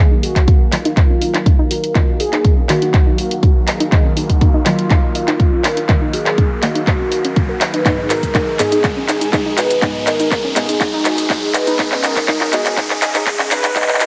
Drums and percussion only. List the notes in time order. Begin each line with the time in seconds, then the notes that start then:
0.23 open hi-hat
0.36 kick, clap, closed hi-hat
0.48 kick, closed hi-hat
0.72 clap, open hi-hat
0.85 closed hi-hat
0.97 kick, clap, closed hi-hat
1.21 open hi-hat
1.34 clap, closed hi-hat
1.46 kick, closed hi-hat
1.71 open hi-hat
1.84 closed hi-hat
1.95 kick, clap, closed hi-hat
2.20 open hi-hat
2.33 clap, closed hi-hat
2.45 kick, closed hi-hat
2.69 clap, open hi-hat
2.82 closed hi-hat
2.94 kick, clap, closed hi-hat
3.18 open hi-hat
3.31 closed hi-hat
3.43 kick, closed hi-hat
3.68 clap, open hi-hat
3.80 closed hi-hat
3.92 kick, clap, closed hi-hat
4.17 open hi-hat
4.30 kick, closed hi-hat
4.41 kick, closed hi-hat
4.66 clap, open hi-hat
4.79 closed hi-hat
4.90 kick, clap, closed hi-hat
5.15 open hi-hat
5.28 clap, closed hi-hat
5.40 kick, closed hi-hat
5.64 clap, open hi-hat
5.77 closed hi-hat
5.89 kick, clap, closed hi-hat
6.13 open hi-hat
6.26 clap, closed hi-hat
6.38 kick, closed hi-hat
6.63 clap, open hi-hat
6.75 closed hi-hat
6.87 kick, clap, closed hi-hat
7.12 open hi-hat
7.25 closed hi-hat
7.36 kick, closed hi-hat
7.61 clap, open hi-hat
7.74 closed hi-hat
7.86 kick, clap, closed hi-hat, cabasa
8.10 clap, open hi-hat, cabasa
8.23 kick, closed hi-hat, cabasa
8.35 kick, clap, closed hi-hat, cabasa
8.59 clap, open hi-hat, cabasa
8.72 closed hi-hat, cabasa
8.84 kick, clap, closed hi-hat, cabasa
9.08 clap, open hi-hat, cabasa
9.21 closed hi-hat, cabasa
9.33 kick, clap, closed hi-hat, cabasa
9.58 clap, open hi-hat, cabasa
9.70 closed hi-hat, cabasa
9.82 kick, clap, closed hi-hat, cabasa
10.07 clap, open hi-hat, cabasa
10.20 closed hi-hat, cabasa
10.31 kick, clap, closed hi-hat, cabasa
10.56 clap, open hi-hat, cabasa
10.69 closed hi-hat, cabasa
10.81 kick, clap, closed hi-hat, cabasa
11.05 clap, open hi-hat, cabasa
11.18 closed hi-hat, cabasa
11.30 kick, clap, closed hi-hat, cabasa
11.54 clap, open hi-hat, cabasa
11.67 closed hi-hat, cabasa
11.79 kick, clap, closed hi-hat, cabasa
11.92 clap
12.04 clap, open hi-hat, cabasa
12.16 kick, clap, closed hi-hat, cabasa
12.28 kick, clap, closed hi-hat, cabasa
12.41 clap
12.53 clap, open hi-hat, cabasa
12.66 clap, closed hi-hat, cabasa
12.77 kick, clap, closed hi-hat, cabasa
12.90 clap
13.02 clap, open hi-hat, cabasa
13.15 clap, closed hi-hat, cabasa
13.26 kick, clap, closed hi-hat, cabasa
13.39 clap
13.51 clap, open hi-hat, cabasa
13.64 clap, closed hi-hat, cabasa
13.76 kick, clap, closed hi-hat, cabasa
13.82 clap
13.88 clap
13.94 clap
14.00 clap, open hi-hat, cabasa